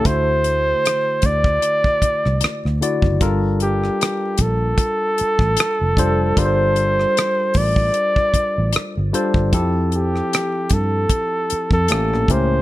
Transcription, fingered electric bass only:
X:1
M:4/4
L:1/16
Q:"Swing 16ths" 1/4=76
K:Gdor
V:1 name="Fingered electric bass" clef=bass
D,,4 z2 D,,2 z3 C,, z D,, z ^F,,, | G,,,4 z2 B,,,2 z3 A,,, z F,,, F,,,2 | G,,,4 z2 A,,,2 z3 A,,, z G,,, z G,,, | F,,4 z2 G,,2 z3 F,, A,,, B,,, ^C,,2 |]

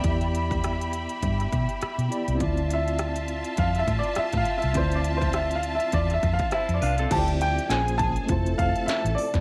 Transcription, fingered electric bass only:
X:1
M:4/4
L:1/16
Q:"Swing 16ths" 1/4=102
K:Ddor
V:1 name="Fingered electric bass" clef=bass
E,,6- E,, z G,,2 B,, z2 B,, z C,, | D,,6- D,, z F,,2 A,, z2 A,, z C,, | D,,6- D,, z E,,2 F,, z2 F,, C,,2 | D,,4 _B,,,4 F,,,2 F,,, z2 A,,, z F,,, |]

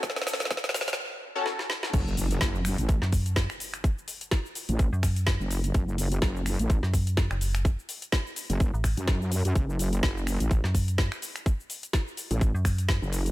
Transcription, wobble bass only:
X:1
M:4/4
L:1/16
Q:"Swing 16ths" 1/4=126
K:F#m
V:1 name="Wobble bass" clef=bass
z16 | F,,,4 F,,,3 A,,,2 z6 z | z6 z A,,,2 z4 F,,,3 | F,,,4 F,,,3 A,,,2 z6 z |
z6 z F,,,2 z2 F,,4 F,, | F,,,4 F,,,3 A,,,2 z6 z | z6 z A,,,2 z4 F,,,3 |]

